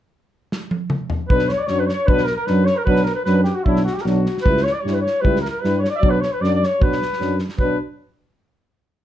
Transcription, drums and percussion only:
0.52 snare medium
0.71 high tom medium
0.90 mid tom medium
1.10 floor tom medium
1.30 kick medium
1.39 snare soft
1.49 snare soft
1.68 snare soft
1.89 snare soft
2.08 kick medium
2.18 snare soft
2.27 snare soft
2.47 snare soft
2.66 snare soft
2.87 kick medium
2.96 snare soft
3.06 snare soft
3.26 snare soft
3.44 snare soft
3.66 kick medium
3.76 snare soft
3.87 snare soft
3.98 snare soft
4.06 snare soft
4.26 snare soft
4.38 snare soft
4.46 kick medium
4.57 snare soft
4.67 snare soft
4.87 snare soft
5.06 snare soft
5.25 kick medium
5.36 snare soft
5.45 snare soft
5.65 snare soft
5.85 snare soft
6.03 kick medium
6.23 snare soft
6.44 snare soft
6.63 snare soft
6.82 kick medium
6.92 snare soft
7.02 snare soft
7.13 snare soft
7.21 snare soft
7.39 snare soft
7.49 snare soft
7.58 kick medium

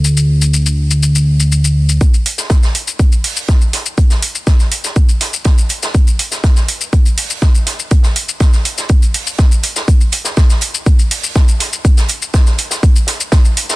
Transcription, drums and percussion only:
0.04 shaker medium
0.17 shaker medium
0.42 shaker medium
0.54 shaker medium
0.66 shaker medium
0.91 shaker medium
1.03 shaker medium
1.15 shaker medium
1.40 shaker medium
1.52 shaker medium
1.65 shaker medium
1.89 shaker medium
2.01 kick loud
2.01 closed hi-hat medium
2.01 shaker medium
2.14 shaker medium
2.26 closed hi-hat medium
2.26 open hi-hat loud
2.38 snare soft
2.38 shaker medium
2.50 kick loud
2.50 snare loud
2.50 closed hi-hat medium
2.50 shaker medium
2.63 snare medium
2.63 shaker medium
2.75 closed hi-hat medium
2.75 open hi-hat medium
2.88 shaker medium
2.99 kick loud
2.99 closed hi-hat medium
2.99 shaker medium
3.12 shaker medium
3.24 open hi-hat loud
3.24 open hi-hat medium
3.37 shaker medium
3.48 kick loud
3.48 snare loud
3.48 closed hi-hat medium
3.48 shaker medium
3.61 shaker medium
3.73 snare soft
3.73 closed hi-hat medium
3.73 open hi-hat medium
3.86 shaker medium
3.98 kick loud
3.98 closed hi-hat medium
3.98 shaker medium
4.10 snare soft
4.10 shaker medium
4.22 closed hi-hat medium
4.22 open hi-hat loud
4.35 shaker medium
4.47 kick loud
4.47 snare loud
4.47 closed hi-hat medium
4.47 shaker medium
4.60 snare soft
4.60 shaker medium
4.72 closed hi-hat medium
4.72 open hi-hat medium
4.84 snare soft
4.84 shaker medium
4.96 kick loud
4.96 closed hi-hat medium
4.96 shaker medium
5.09 shaker medium
5.21 snare soft
5.21 closed hi-hat medium
5.21 open hi-hat loud
5.33 closed hi-hat soft
5.33 shaker medium
5.45 kick loud
5.45 snare loud
5.45 closed hi-hat medium
5.45 shaker medium
5.58 shaker medium
5.69 closed hi-hat medium
5.69 open hi-hat medium
5.83 snare medium
5.83 shaker medium
5.95 kick loud
5.95 closed hi-hat medium
5.95 shaker medium
6.07 shaker medium
6.19 closed hi-hat medium
6.19 open hi-hat loud
6.32 snare soft
6.32 shaker medium
6.44 kick loud
6.44 snare loud
6.44 closed hi-hat medium
6.44 shaker medium
6.56 snare soft
6.56 shaker medium
6.68 closed hi-hat medium
6.68 open hi-hat loud
6.81 shaker medium
6.93 kick loud
6.93 closed hi-hat medium
6.93 shaker medium
7.06 shaker medium
7.17 open hi-hat medium
7.17 open hi-hat loud
7.30 shaker medium
7.42 kick loud
7.42 snare loud
7.42 shaker medium
7.55 shaker medium
7.66 snare soft
7.66 closed hi-hat medium
7.66 open hi-hat loud
7.79 shaker medium
7.91 kick loud
7.91 closed hi-hat medium
7.91 shaker medium
8.03 snare medium
8.03 shaker medium
8.16 closed hi-hat medium
8.16 open hi-hat loud
8.29 shaker medium
8.40 kick loud
8.40 snare loud
8.40 closed hi-hat medium
8.40 shaker medium
8.53 snare soft
8.53 shaker medium
8.65 closed hi-hat medium
8.65 open hi-hat medium
8.78 snare soft
8.78 shaker medium
8.89 kick loud
8.89 closed hi-hat medium
8.89 shaker medium
9.02 shaker medium
9.14 open hi-hat loud
9.14 open hi-hat medium
9.27 shaker medium
9.38 kick loud
9.38 snare loud
9.38 shaker medium
9.52 shaker medium
9.63 closed hi-hat medium
9.63 open hi-hat loud
9.76 snare medium
9.76 shaker medium
9.88 kick loud
9.88 closed hi-hat medium
9.88 shaker medium
10.01 shaker medium
10.12 closed hi-hat medium
10.12 open hi-hat loud
10.24 snare soft
10.24 shaker medium
10.37 kick loud
10.37 snare loud
10.37 closed hi-hat medium
10.37 shaker medium
10.50 snare soft
10.50 shaker medium
10.61 closed hi-hat medium
10.61 open hi-hat medium
10.74 shaker medium
10.86 kick loud
10.86 closed hi-hat medium
10.86 shaker medium
10.99 shaker medium
11.11 open hi-hat loud
11.11 open hi-hat medium
11.24 shaker medium
11.35 kick loud
11.35 snare loud
11.35 closed hi-hat medium
11.35 shaker medium
11.48 shaker medium
11.60 snare soft
11.60 closed hi-hat medium
11.60 open hi-hat medium
11.73 shaker medium
11.85 kick loud
11.85 closed hi-hat medium
11.85 shaker medium
11.97 snare medium
11.97 shaker medium
12.09 closed hi-hat medium
12.09 open hi-hat loud
12.22 shaker medium
12.34 kick loud
12.34 snare loud
12.34 closed hi-hat medium
12.34 shaker medium
12.46 snare soft
12.46 shaker medium
12.58 closed hi-hat medium
12.58 open hi-hat medium
12.71 snare soft
12.71 shaker medium
12.83 kick loud
12.83 closed hi-hat medium
12.83 shaker medium
12.96 shaker medium
13.07 snare soft
13.07 closed hi-hat medium
13.07 open hi-hat loud
13.20 closed hi-hat soft
13.20 shaker medium
13.32 kick loud
13.32 snare loud
13.32 closed hi-hat medium
13.32 shaker medium
13.45 shaker medium
13.57 closed hi-hat medium
13.57 open hi-hat medium
13.70 snare medium
13.70 shaker medium

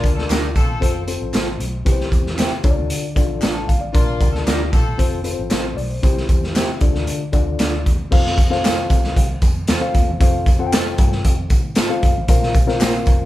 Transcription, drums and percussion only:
0.04 kick medium
0.04 closed hi-hat medium
0.04 tambourine medium
0.18 snare soft
0.30 snare loud
0.30 clap medium
0.30 closed hi-hat medium
0.30 tambourine medium
0.55 kick loud
0.55 closed hi-hat medium
0.55 tambourine medium
0.82 kick medium
0.82 closed hi-hat medium
0.82 tambourine soft
1.08 closed hi-hat medium
1.08 tambourine medium
1.34 snare loud
1.34 clap medium
1.34 closed hi-hat medium
1.34 tambourine medium
1.60 closed hi-hat medium
1.86 kick loud
1.86 closed hi-hat medium
1.86 tambourine medium
2.01 snare soft
2.12 kick medium
2.12 closed hi-hat medium
2.12 tambourine medium
2.26 snare soft
2.39 snare loud
2.39 clap medium
2.39 closed hi-hat medium
2.39 tambourine medium
2.63 kick loud
2.63 closed hi-hat medium
2.63 tambourine medium
2.90 closed hi-hat medium
2.90 tambourine soft
3.16 kick medium
3.16 closed hi-hat medium
3.16 tambourine medium
3.42 snare loud
3.42 clap medium
3.42 closed hi-hat medium
3.42 tambourine medium
3.69 kick medium
3.69 closed hi-hat medium
3.69 tambourine soft
3.95 kick loud
3.95 closed hi-hat medium
3.95 tambourine medium
4.21 kick loud
4.21 closed hi-hat medium
4.21 tambourine medium
4.35 snare soft
4.47 snare loud
4.47 clap medium
4.47 closed hi-hat medium
4.47 tambourine medium
4.73 kick loud
4.73 closed hi-hat medium
4.73 tambourine medium
4.99 kick medium
4.99 closed hi-hat medium
5.24 closed hi-hat medium
5.24 tambourine medium
5.50 snare medium
5.50 clap medium
5.50 closed hi-hat medium
5.50 tambourine medium
5.78 open hi-hat soft
6.03 kick loud
6.03 closed hi-hat medium
6.03 tambourine medium
6.17 snare soft
6.29 kick medium
6.29 closed hi-hat medium
6.29 tambourine medium
6.44 snare soft
6.55 snare loud
6.55 clap loud
6.55 closed hi-hat medium
6.55 tambourine medium
6.81 kick loud
6.81 closed hi-hat medium
6.81 tambourine medium
6.95 snare soft
7.07 closed hi-hat medium
7.33 kick medium
7.33 closed hi-hat medium
7.33 tambourine medium
7.59 snare loud
7.59 clap medium
7.59 closed hi-hat medium
7.59 tambourine medium
7.86 kick medium
7.86 closed hi-hat medium
7.86 tambourine soft
8.12 kick loud
8.12 crash loud
8.12 tambourine medium
8.26 snare soft
8.38 kick medium
8.38 closed hi-hat medium
8.38 tambourine medium
8.52 snare soft
8.65 snare loud
8.65 clap loud
8.65 closed hi-hat medium
8.65 tambourine medium
8.90 kick loud
8.90 closed hi-hat medium
8.90 tambourine medium
9.04 snare soft
9.16 kick medium
9.16 closed hi-hat loud
9.42 kick medium
9.42 closed hi-hat medium
9.42 tambourine medium
9.67 snare loud
9.67 clap medium
9.67 closed hi-hat medium
9.67 tambourine medium
9.94 kick medium
9.94 closed hi-hat medium
9.94 tambourine soft
10.21 kick loud
10.21 closed hi-hat medium
10.21 tambourine medium
10.46 kick loud
10.46 closed hi-hat medium
10.46 tambourine medium
10.72 snare loud
10.72 clap loud
10.72 closed hi-hat medium
10.72 tambourine loud
10.98 kick loud
10.98 closed hi-hat medium
10.98 tambourine medium
11.12 snare soft
11.25 kick medium
11.25 closed hi-hat loud
11.25 tambourine soft
11.50 kick medium
11.50 closed hi-hat medium
11.50 tambourine medium
11.75 snare loud
11.75 clap medium
11.75 closed hi-hat medium
11.75 tambourine medium
12.03 kick medium
12.03 closed hi-hat medium
12.03 tambourine soft
12.28 kick loud
12.28 closed hi-hat loud
12.28 tambourine medium
12.43 snare soft
12.55 kick loud
12.55 closed hi-hat medium
12.55 tambourine medium
12.68 snare soft
12.81 snare loud
12.81 clap loud
12.81 closed hi-hat medium
12.81 tambourine loud
13.06 kick loud
13.06 closed hi-hat medium
13.06 tambourine medium

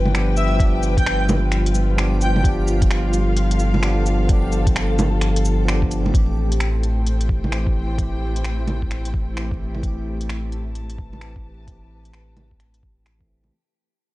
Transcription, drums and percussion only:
0.06 low bongo soft
0.15 finger snap loud
0.15 closed hi-hat medium
0.37 cabasa medium
0.60 kick loud
0.60 closed hi-hat medium
0.83 cabasa medium
0.97 kick loud
0.97 closed hi-hat medium
1.06 finger snap loud
1.06 closed hi-hat medium
1.29 closed hi-hat soft
1.29 low bongo medium
1.29 cabasa medium
1.52 finger snap medium
1.52 closed hi-hat medium
1.66 closed hi-hat medium
1.75 cabasa medium
1.98 finger snap loud
1.98 closed hi-hat medium
2.21 cabasa medium
2.36 low bongo soft
2.44 kick loud
2.44 closed hi-hat medium
2.68 cabasa medium
2.82 kick loud
2.82 closed hi-hat medium
2.91 finger snap loud
2.91 closed hi-hat medium
3.13 closed hi-hat soft
3.13 cabasa medium
3.37 closed hi-hat medium
3.51 closed hi-hat medium
3.59 cabasa medium
3.74 low bongo soft
3.83 finger snap loud
3.83 closed hi-hat medium
4.06 cabasa medium
4.29 kick loud
4.29 closed hi-hat medium
4.52 cabasa medium
4.67 kick loud
4.67 closed hi-hat medium
4.76 finger snap loud
4.76 closed hi-hat medium
4.99 closed hi-hat soft
4.99 low bongo medium
4.99 cabasa medium
5.21 finger snap medium
5.21 closed hi-hat medium
5.36 closed hi-hat medium
5.45 cabasa medium
5.68 finger snap loud
5.68 closed hi-hat medium
5.82 kick medium
5.91 closed hi-hat soft
5.91 cabasa medium
6.06 low bongo soft
6.14 kick loud
6.14 closed hi-hat medium
6.52 closed hi-hat medium
6.60 finger snap loud
6.60 closed hi-hat medium
6.83 closed hi-hat soft
7.07 closed hi-hat medium
7.21 closed hi-hat medium
7.29 kick loud
7.44 low bongo soft
7.52 finger snap loud
7.52 closed hi-hat medium
7.67 kick loud
7.98 kick loud
7.98 closed hi-hat medium
8.36 closed hi-hat medium
8.44 finger snap loud
8.44 closed hi-hat medium
8.68 closed hi-hat soft
8.68 low bongo medium
8.82 kick medium
8.91 finger snap medium
8.91 closed hi-hat medium
9.05 closed hi-hat medium
9.14 kick loud
9.37 finger snap loud
9.37 closed hi-hat medium
9.51 kick loud
9.75 low bongo soft
9.83 kick loud
9.83 closed hi-hat medium
10.21 closed hi-hat medium
10.29 finger snap loud
10.29 closed hi-hat medium
10.52 closed hi-hat soft
10.75 closed hi-hat medium
10.90 closed hi-hat medium
10.98 kick loud
11.13 low bongo soft
11.21 finger snap loud
11.21 closed hi-hat medium
11.36 kick loud
11.68 kick loud
11.68 closed hi-hat medium
12.05 closed hi-hat soft
12.13 finger snap loud
12.13 closed hi-hat medium
12.37 closed hi-hat soft
12.37 low bongo medium
12.51 kick medium
12.60 finger snap medium
12.60 closed hi-hat medium
12.74 closed hi-hat medium
12.83 kick loud
13.06 finger snap loud
13.06 closed hi-hat soft
13.21 kick loud
13.43 low bongo soft

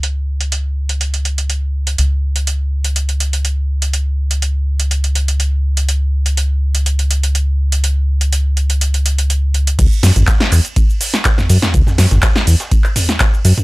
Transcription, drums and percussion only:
0.03 closed hi-hat medium
0.41 closed hi-hat soft
0.52 closed hi-hat medium
0.89 closed hi-hat soft
1.01 closed hi-hat medium
1.14 closed hi-hat soft
1.25 closed hi-hat medium
1.38 closed hi-hat soft
1.50 closed hi-hat medium
1.87 closed hi-hat soft
1.98 closed hi-hat medium
2.36 closed hi-hat soft
2.47 closed hi-hat medium
2.84 closed hi-hat soft
2.96 closed hi-hat medium
3.09 closed hi-hat soft
3.20 closed hi-hat medium
3.33 closed hi-hat soft
3.45 closed hi-hat medium
3.82 closed hi-hat soft
3.93 closed hi-hat medium
4.31 closed hi-hat soft
4.42 closed hi-hat medium
4.80 closed hi-hat soft
4.91 closed hi-hat medium
5.04 closed hi-hat soft
5.15 closed hi-hat medium
5.28 closed hi-hat soft
5.40 closed hi-hat medium
5.77 closed hi-hat soft
5.89 closed hi-hat medium
6.26 closed hi-hat soft
6.37 closed hi-hat medium
6.75 closed hi-hat soft
6.86 closed hi-hat medium
6.99 closed hi-hat soft
7.11 closed hi-hat medium
7.23 closed hi-hat medium
7.35 closed hi-hat medium
7.72 closed hi-hat medium
7.84 closed hi-hat medium
8.21 closed hi-hat soft
8.33 closed hi-hat medium
8.57 closed hi-hat soft
8.70 closed hi-hat medium
8.81 closed hi-hat medium
8.94 closed hi-hat soft
9.06 closed hi-hat medium
9.18 closed hi-hat medium
9.30 closed hi-hat medium
9.54 closed hi-hat soft
9.67 closed hi-hat medium
9.79 kick loud
9.79 closed hi-hat loud
9.79 closed hi-hat medium
9.79 ride medium
9.79 crash loud
9.79 shaker soft
9.92 shaker soft
10.03 snare medium
10.03 closed hi-hat medium
10.03 open hi-hat loud
10.03 ride medium
10.03 shaker medium
10.16 closed hi-hat medium
10.16 mid tom medium
10.16 shaker soft
10.27 kick loud
10.27 snare loud
10.27 clap loud
10.27 closed hi-hat medium
10.27 ride medium
10.27 shaker soft
10.40 snare medium
10.40 closed hi-hat soft
10.40 shaker soft
10.52 clap soft
10.52 closed hi-hat medium
10.52 open hi-hat medium
10.52 ride medium
10.52 shaker medium
10.65 closed hi-hat medium
10.65 shaker soft
10.76 kick loud
10.76 closed hi-hat medium
10.76 ride medium
10.76 shaker soft
10.90 shaker soft
11.01 closed hi-hat medium
11.01 open hi-hat loud
11.01 ride medium
11.01 shaker medium
11.14 snare medium
11.14 closed hi-hat medium
11.14 shaker soft
11.25 kick loud
11.25 snare loud
11.25 clap loud
11.25 closed hi-hat loud
11.25 closed hi-hat medium
11.25 ride medium
11.25 shaker soft
11.38 snare soft
11.38 mid tom medium
11.38 shaker soft
11.50 closed hi-hat medium
11.50 open hi-hat loud
11.50 ride medium
11.50 shaker medium
11.62 snare medium
11.62 closed hi-hat medium
11.62 mid tom medium
11.62 shaker soft
11.74 kick loud
11.74 closed hi-hat medium
11.74 ride medium
11.74 shaker soft
11.87 snare soft
11.87 mid tom medium
11.87 shaker soft
11.98 snare medium
11.98 closed hi-hat medium
11.98 open hi-hat loud
11.98 ride medium
11.98 shaker medium
12.11 snare soft
12.11 closed hi-hat medium
12.11 mid tom medium
12.11 shaker soft
12.22 kick loud
12.22 snare loud
12.22 clap loud
12.22 closed hi-hat medium
12.22 open hi-hat medium
12.22 ride medium
12.22 shaker soft
12.36 snare medium
12.36 shaker soft
12.47 closed hi-hat medium
12.47 open hi-hat medium
12.47 ride medium
12.47 shaker medium
12.60 snare medium
12.60 closed hi-hat medium
12.60 shaker soft
12.71 kick loud
12.71 closed hi-hat medium
12.71 ride medium
12.71 shaker soft
12.84 clap soft
12.84 shaker soft
12.96 closed hi-hat medium
12.96 mid tom loud
12.96 open hi-hat loud
12.96 ride medium
12.96 shaker medium
13.09 snare medium
13.09 closed hi-hat medium
13.09 shaker soft
13.20 kick loud
13.20 snare loud
13.20 clap loud
13.20 closed hi-hat medium
13.20 ride medium
13.20 shaker soft
13.34 shaker soft
13.45 closed hi-hat medium
13.45 open hi-hat loud
13.45 ride medium
13.45 shaker medium
13.58 closed hi-hat soft
13.58 closed hi-hat medium
13.58 mid tom loud
13.58 shaker soft

